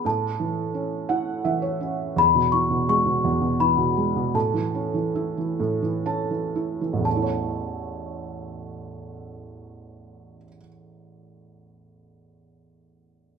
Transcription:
0.05 2.13 A2 medium
0.05 1.79 A5 medium
0.40 1.43 E3 soft
0.74 1.79 C#4 medium
1.09 2.14 E4 soft
1.09 1.43 F#5 medium
1.45 2.14 E3 soft
1.45 1.62 E5 medium
1.62 2.12 C#5 medium
1.81 2.15 C#4 soft
2.16 3.23 E2 medium
2.16 2.54 B5 medium
2.35 2.69 B2 soft
2.52 3.59 E3 soft
2.52 2.88 C#6 medium
2.70 3.04 B2 soft
2.88 3.95 G#3 soft
2.88 3.63 C#6 medium
3.06 3.39 B2 soft
3.24 4.31 E2 medium
3.41 3.76 B2 soft
3.60 4.33 E3 soft
3.60 4.37 B5 medium
3.77 4.14 B2 soft
3.97 4.34 G#3 soft
4.16 4.34 B2 soft
4.34 5.58 A2 medium
4.34 6.50 A5 medium
4.54 4.93 E3 soft
4.75 6.04 C#4 soft
4.94 5.36 E3 soft
5.15 6.54 E4 soft
5.37 5.81 E3 soft
5.60 7.02 A2 medium
5.82 6.29 E3 soft
6.06 7.03 C#4 soft
6.06 7.03 A5 medium
6.30 6.80 E3 soft
6.56 7.05 E4 soft
6.81 7.06 E3 soft
6.93 10.37 A1 soft
6.98 10.43 E2 soft
7.04 10.48 A3 soft
7.04 10.50 A5 medium
7.10 10.54 C#4 soft
7.16 10.60 E4 soft
7.22 10.67 C#5 soft

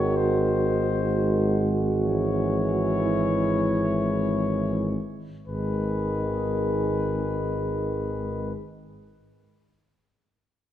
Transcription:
0.00 4.96 G#1 soft
0.00 1.64 D#3 soft
0.00 4.96 G#3 soft
0.00 3.02 F#4 soft
0.00 0.18 C#5 soft
0.17 1.69 C5 soft
1.99 4.96 E3 soft
1.99 4.96 C#5 soft
3.02 5.00 E4 soft
5.47 8.53 G#1 soft
5.47 8.52 D#3 soft
5.47 8.53 G#3 soft
5.47 8.54 G#4 soft
5.47 8.53 B4 soft

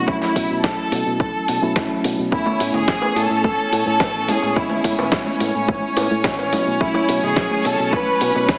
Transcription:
0.07 0.19 B1 loud
0.07 1.59 F#3 medium
0.07 1.59 A3 medium
0.07 1.60 C#4 medium
0.07 0.21 E4 medium
0.07 1.60 E4 loud
0.07 kick loud
0.22 0.61 E4 medium
0.22 snare soft
0.36 0.47 B2 loud
0.36 kick medium
0.36 open hi-hat medium
0.50 0.61 B2 medium
0.63 0.75 B1 medium
0.63 1.16 A4 medium
0.63 kick loud
0.63 snare loud
0.92 1.03 B2 medium
0.92 open hi-hat loud
1.06 1.21 B2 medium
1.20 1.31 B1 medium
1.20 2.00 A4 medium
1.20 kick loud
1.48 1.59 B2 medium
1.48 open hi-hat medium
1.62 1.73 B2 medium
1.62 1.73 F#3 medium
1.62 1.73 A3 medium
1.62 1.73 C#4 medium
1.62 1.73 E4 medium
1.76 1.87 B1 medium
1.76 2.29 A3 medium
1.76 kick loud
1.76 snare loud
2.04 2.15 B2 medium
2.04 open hi-hat loud
2.19 2.29 B2 medium
2.31 2.43 A1 loud
2.31 4.25 A3 medium
2.31 4.25 B3 medium
2.31 8.58 C#4 medium
2.31 4.25 C#4 medium
2.31 2.71 E4 medium
2.31 4.26 E4 medium
2.31 8.58 C#5 medium
2.31 kick loud
2.46 high bongo medium
2.46 high conga medium
2.46 low conga medium
2.60 2.71 A2 medium
2.60 open hi-hat medium
2.74 2.85 A2 medium
2.74 3.14 G#4 loud
2.74 low conga loud
2.88 2.99 A1 medium
2.88 kick loud
2.88 snare loud
3.02 high bongo medium
3.02 high conga medium
3.16 3.27 A2 medium
3.16 3.85 A4 loud
3.16 open hi-hat loud
3.30 3.46 A2 medium
3.44 3.55 A1 medium
3.44 kick loud
3.44 high bongo medium
3.44 high conga medium
3.72 3.83 A2 medium
3.72 open hi-hat loud
3.86 3.97 A2 medium
3.86 4.26 A4 loud
3.86 high conga medium
4.00 4.30 A1 medium
4.00 kick loud
4.00 snare loud
4.00 high bongo medium
4.28 4.39 A2 medium
4.28 4.53 G#3 medium
4.28 4.53 B3 medium
4.28 4.53 C#4 medium
4.28 4.53 E4 medium
4.28 4.57 G#4 medium
4.28 open hi-hat loud
4.28 high conga medium
4.42 4.53 A2 medium
4.42 high bongo medium
4.56 4.67 A1 loud
4.56 6.49 G#3 medium
4.56 6.49 B3 medium
4.56 6.50 C#4 medium
4.56 5.41 E4 medium
4.56 6.50 E4 loud
4.56 kick loud
4.69 high conga loud
4.69 low conga medium
4.84 4.95 A2 medium
4.84 kick medium
4.84 open hi-hat loud
4.99 5.09 A2 medium
4.99 high bongo medium
4.99 low conga medium
5.12 5.23 A1 medium
5.12 kick loud
5.12 snare loud
5.26 high conga medium
5.40 5.51 A2 medium
5.40 open hi-hat loud
5.40 high bongo soft
5.55 5.70 A2 medium
5.68 5.79 A1 medium
5.68 kick loud
5.68 high conga loud
5.97 6.08 A2 medium
5.97 open hi-hat loud
5.97 high bongo medium
6.11 6.22 A2 medium
6.11 high conga medium
6.24 6.54 A1 medium
6.24 kick loud
6.24 snare loud
6.39 high bongo soft
6.52 6.64 B2 medium
6.52 6.77 F#3 medium
6.52 6.77 A3 medium
6.52 6.78 C#4 medium
6.52 6.78 E4 medium
6.52 open hi-hat loud
6.52 high conga medium
6.67 6.77 B2 medium
6.80 6.92 B1 loud
6.80 8.58 F#3 medium
6.80 8.58 A3 medium
6.80 8.58 C#4 medium
6.80 7.20 E4 medium
6.80 8.58 E4 medium
6.80 kick loud
6.94 high bongo medium
6.94 high conga loud
6.94 low conga medium
7.09 7.20 B2 loud
7.09 open hi-hat loud
7.23 7.34 B2 medium
7.23 7.62 G#4 loud
7.23 low conga medium
7.36 7.48 B1 medium
7.36 kick loud
7.36 snare loud
7.36 high bongo soft
7.51 high conga medium
7.65 7.76 B2 medium
7.65 7.93 A4 loud
7.65 open hi-hat loud
7.79 7.94 B2 medium
7.93 8.04 B1 medium
7.93 8.58 B4 loud
7.93 kick loud
7.93 high bongo medium
7.93 high conga medium
8.21 8.32 B2 medium
8.21 open hi-hat loud
8.35 8.46 B2 medium
8.35 high bongo soft
8.35 high conga medium
8.49 8.58 B1 medium
8.49 kick loud
8.49 snare loud

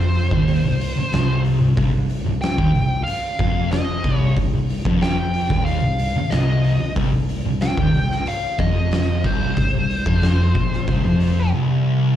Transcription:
0.00 0.27 F1 medium
0.00 0.30 F2 loud
0.00 1.40 C5 medium
0.15 open hi-hat medium
0.31 0.61 D#1 medium
0.31 0.63 D#2 loud
0.31 kick medium
0.48 open hi-hat medium
0.64 0.95 C1 medium
0.64 0.90 C2 medium
0.80 open hi-hat medium
0.97 muted distorted electric guitar stroke medium
0.97 muted picked electric bass stroke soft
1.12 1.58 C1 loud
1.12 1.59 C2 medium
1.12 snare loud
1.12 open hi-hat medium
1.45 open hi-hat medium
1.60 1.76 C1 medium
1.60 1.74 C2 medium
1.76 1.92 C1 loud
1.76 1.91 C2 loud
1.76 kick loud
1.76 open hi-hat medium
1.92 2.23 C1 medium
1.92 2.19 C2 medium
2.10 open hi-hat medium
2.25 2.56 C1 medium
2.25 2.51 C2 medium
2.41 3.03 G5 loud
2.41 snare loud
2.41 open hi-hat medium
2.57 2.73 D#1 medium
2.57 2.73 D#2 loud
2.57 kick loud
2.74 3.05 C1 medium
2.74 3.00 C2 medium
2.74 open hi-hat medium
3.04 3.66 F5 medium
3.04 open hi-hat medium
3.39 4.00 F1 medium
3.39 4.03 F2 medium
3.39 kick loud
3.39 open hi-hat medium
3.71 4.18 D#5 medium
3.71 snare loud
3.71 open hi-hat medium
4.04 4.34 C1 medium
4.04 4.36 C2 loud
4.04 kick loud
4.04 open hi-hat medium
4.18 4.32 C#5 medium
4.37 4.52 C1 medium
4.37 4.53 C2 medium
4.37 kick medium
4.37 open hi-hat medium
4.54 4.84 C1 medium
4.54 4.79 C2 medium
4.69 open hi-hat medium
4.85 5.46 F1 medium
4.85 5.50 F2 loud
4.85 kick loud
5.01 5.65 G5 loud
5.01 snare loud
5.01 open hi-hat medium
5.34 open hi-hat medium
5.50 5.80 D#1 medium
5.50 5.82 D#2 medium
5.50 kick loud
5.50 snare soft
5.65 6.33 F5 loud
5.65 open hi-hat medium
5.82 6.14 C1 medium
5.82 6.09 C2 medium
5.98 open hi-hat medium
6.15 muted picked electric bass stroke soft
6.15 muted distorted electric guitar stroke medium
6.30 6.77 C1 medium
6.30 6.78 C2 loud
6.30 6.92 D#5 medium
6.30 snare loud
6.30 open hi-hat medium
6.64 open hi-hat medium
6.79 6.95 C1 medium
6.79 6.95 C2 medium
6.96 7.11 C1 medium
6.96 7.12 C2 loud
6.96 kick loud
6.96 open hi-hat medium
7.12 7.43 C1 medium
7.12 7.39 C2 medium
7.29 open hi-hat medium
7.45 7.76 C1 medium
7.45 7.71 C2 medium
7.61 8.29 G5 loud
7.61 snare loud
7.61 open hi-hat medium
7.77 7.93 D#1 medium
7.77 7.93 D#2 loud
7.77 kick loud
7.94 8.25 C1 medium
7.94 8.20 C2 medium
7.94 open hi-hat medium
8.11 snare soft
8.26 8.58 F5 loud
8.26 open hi-hat medium
8.59 9.21 F1 medium
8.59 9.23 F2 loud
8.59 9.27 D#5 loud
8.59 kick loud
8.59 open hi-hat medium
8.91 snare loud
8.91 open hi-hat medium
9.24 9.55 C1 medium
9.24 9.56 C2 loud
9.24 11.50 C5 medium
9.24 kick loud
9.24 open hi-hat medium
9.57 9.73 C1 medium
9.57 9.73 C2 medium
9.57 kick loud
9.57 open hi-hat medium
9.74 10.04 C1 medium
9.74 10.00 C2 medium
9.90 open hi-hat medium
10.06 10.52 F1 medium
10.06 10.55 F2 loud
10.06 kick loud
10.22 snare loud
10.22 open hi-hat medium
10.55 10.85 A#1 medium
10.55 10.87 A#2 loud
10.55 kick medium
10.55 open hi-hat soft
10.73 snare soft
10.87 11.03 C1 medium
10.87 11.04 C2 loud
10.87 kick loud
10.87 open hi-hat medium
11.05 11.50 F1 medium
11.05 11.53 F2 loud
11.20 open hi-hat medium
11.53 12.16 C2 loud

